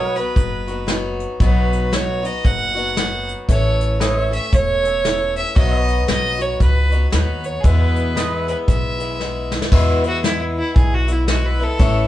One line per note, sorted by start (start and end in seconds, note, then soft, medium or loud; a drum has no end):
0.00 0.21 B1 medium
0.00 0.15 F#3 medium
0.00 0.16 B3 medium
0.00 0.16 D#4 soft
0.00 0.14 F#4 medium
0.00 0.09 A4 medium
0.00 0.17 C#5 medium
0.00 3.45 D#5 medium
0.09 3.45 B4 medium
0.15 0.69 B3 soft
0.15 0.68 D#4 soft
0.15 0.66 F#4 soft
0.15 0.88 B4 medium
0.15 closed hi-hat medium
0.36 1.25 F#1 medium
0.36 kick loud
0.36 closed hi-hat medium
0.67 0.87 B3 soft
0.67 0.89 D#4 soft
0.67 0.88 F#4 soft
0.67 closed hi-hat medium
0.87 1.40 F#3 medium
0.87 1.40 B3 medium
0.87 1.41 D#4 medium
0.87 snare medium
0.87 closed hi-hat medium
0.91 1.41 F#4 medium
1.20 closed hi-hat medium
1.40 2.29 B1 medium
1.40 1.92 B2 medium
1.40 1.91 F#3 medium
1.40 1.92 B3 medium
1.40 1.93 D#4 medium
1.40 1.93 F#4 medium
1.40 1.94 B4 medium
1.40 kick loud
1.40 closed hi-hat medium
1.72 closed hi-hat medium
1.92 2.24 F#3 medium
1.92 2.24 B3 medium
1.92 2.23 D#4 medium
1.92 2.21 F#4 medium
1.92 2.27 C#5 medium
1.92 snare loud
1.92 closed hi-hat medium
2.23 2.77 B3 soft
2.23 2.75 D#4 soft
2.23 2.73 F#4 soft
2.23 2.47 D#5 medium
2.23 closed hi-hat medium
2.45 3.33 F#1 medium
2.45 3.28 F#5 loud
2.45 kick loud
2.45 closed hi-hat medium
2.75 2.96 B3 soft
2.75 2.97 D#4 soft
2.75 2.96 F#4 soft
2.75 closed hi-hat medium
2.96 3.48 F#3 medium
2.96 3.49 B3 medium
2.96 3.50 D#4 medium
2.96 3.50 F#4 medium
2.96 snare medium
2.96 closed hi-hat medium
3.29 closed hi-hat medium
3.49 4.37 A1 medium
3.49 4.00 A2 medium
3.49 3.98 E3 medium
3.49 4.00 A3 medium
3.49 4.01 C#4 medium
3.49 4.02 A4 medium
3.49 3.98 C#5 medium
3.49 kick loud
3.49 closed hi-hat medium
3.81 closed hi-hat medium
4.00 4.32 E3 medium
4.00 4.33 A3 medium
4.00 4.31 C#4 medium
4.00 4.30 A4 medium
4.00 4.25 B4 medium
4.00 4.31 C#5 medium
4.00 4.22 D#5 medium
4.00 snare medium
4.00 closed hi-hat medium
4.22 5.55 C#5 medium
4.22 5.55 E5 medium
4.31 4.85 A3 soft
4.31 4.84 C#4 soft
4.31 4.82 A4 soft
4.31 4.56 E5 medium
4.31 closed hi-hat medium
4.53 5.41 E1 medium
4.53 5.36 C#5 loud
4.53 kick loud
4.53 closed hi-hat medium
4.83 5.04 A3 soft
4.83 5.05 C#4 soft
4.83 5.04 A4 medium
4.83 closed hi-hat medium
5.04 5.56 E3 medium
5.04 5.57 A3 medium
5.04 5.57 C#4 medium
5.04 5.57 A4 medium
5.04 snare medium
5.04 closed hi-hat medium
5.36 5.55 E5 medium
5.36 closed hi-hat soft
5.55 6.01 B1 medium
5.55 6.08 B2 medium
5.55 6.06 F#3 medium
5.55 6.08 B3 medium
5.55 6.08 D#4 medium
5.55 6.09 F#4 medium
5.55 5.81 C#5 medium
5.55 6.05 D#5 medium
5.55 5.77 E5 medium
5.55 kick loud
5.55 closed hi-hat medium
5.77 7.62 B4 medium
5.77 7.62 D#5 medium
5.88 closed hi-hat medium
6.07 6.52 B1 medium
6.07 6.39 F#3 medium
6.07 6.40 B3 medium
6.07 6.39 D#4 medium
6.07 6.37 F#4 medium
6.07 6.43 D#5 loud
6.07 snare loud
6.07 closed hi-hat medium
6.39 6.94 B3 soft
6.39 6.91 D#4 soft
6.39 6.90 F#4 medium
6.39 6.61 C#5 medium
6.39 closed hi-hat medium
6.60 7.04 C#2 medium
6.60 7.09 B4 medium
6.60 kick loud
6.60 closed hi-hat medium
6.91 7.11 B3 soft
6.91 7.12 D#4 soft
6.91 7.12 F#4 medium
6.91 closed hi-hat medium
7.10 7.57 D#2 medium
7.10 7.63 F#3 medium
7.10 7.65 B3 medium
7.10 7.64 D#4 medium
7.10 7.65 F#4 medium
7.10 7.46 B4 medium
7.10 snare loud
7.10 closed hi-hat medium
7.43 7.62 C#5 medium
7.43 closed hi-hat medium
7.60 8.16 E2 medium
7.60 8.53 E2 medium
7.60 8.16 B2 medium
7.60 8.14 E3 medium
7.60 7.67 G#4 medium
7.60 kick loud
7.60 closed hi-hat medium
7.65 8.15 G#3 medium
7.65 8.17 B3 medium
7.65 8.17 G#4 medium
7.65 8.48 B4 medium
7.96 closed hi-hat medium
8.15 8.47 E3 soft
8.15 8.48 G#3 medium
8.15 8.47 B3 medium
8.15 8.46 G#4 medium
8.15 9.70 B4 medium
8.15 8.37 D#5 medium
8.15 snare medium
8.15 closed hi-hat medium
8.37 9.71 E5 medium
8.47 9.00 E3 soft
8.47 8.99 G#3 soft
8.47 8.98 B3 soft
8.47 8.97 G#4 soft
8.47 8.57 B4 medium
8.47 closed hi-hat medium
8.68 9.57 B1 medium
8.68 9.48 E5 medium
8.68 kick loud
8.68 closed hi-hat medium
8.98 9.18 E3 soft
8.98 9.19 G#3 soft
8.98 9.20 B3 soft
8.98 9.19 G#4 soft
8.98 closed hi-hat medium
9.19 9.72 E3 medium
9.19 9.72 G#3 medium
9.19 9.72 B3 medium
9.19 9.73 G#4 medium
9.19 snare soft
9.52 snare medium
9.62 snare medium
9.72 10.03 E2 medium
9.72 10.60 E2 medium
9.72 10.04 B2 medium
9.72 10.04 E3 loud
9.72 10.04 G#3 loud
9.72 10.03 B3 medium
9.72 10.02 E4 loud
9.72 11.78 B4 medium
9.72 11.78 E5 medium
9.72 kick loud
9.72 crash loud
10.03 10.22 E3 soft
10.03 10.24 G#3 soft
10.03 10.24 B3 medium
10.03 10.23 E4 soft
10.03 closed hi-hat medium
10.07 10.24 F#4 medium
10.23 11.11 E3 medium
10.23 11.08 G#3 medium
10.23 11.08 B3 medium
10.23 10.41 E4 medium
10.23 11.07 E4 medium
10.23 snare loud
10.23 closed hi-hat medium
10.59 10.75 E4 medium
10.76 11.64 B1 medium
10.76 10.95 G#4 medium
10.76 kick loud
10.76 closed hi-hat medium
10.94 11.13 F#4 medium
11.08 11.26 E3 soft
11.08 11.28 G#3 soft
11.08 11.28 B3 soft
11.08 11.28 E4 medium
11.08 closed hi-hat medium
11.12 11.27 E4 medium
11.28 11.59 E3 medium
11.28 11.60 G#3 medium
11.28 11.60 B3 medium
11.28 11.58 E4 medium
11.28 11.47 F#4 medium
11.28 snare loud
11.28 closed hi-hat medium
11.45 11.65 B4 medium
11.60 11.79 E3 soft
11.60 11.80 G#3 soft
11.60 11.80 B3 soft
11.60 11.80 E4 medium
11.60 12.07 A4 medium
11.79 12.07 A1 loud
11.79 12.07 A2 medium
11.79 12.07 E3 medium
11.79 12.07 A3 medium
11.79 12.07 C#4 medium
11.79 12.07 E4 medium
11.79 12.07 C#5 medium
11.79 12.07 E5 medium
11.79 kick loud
11.79 closed hi-hat medium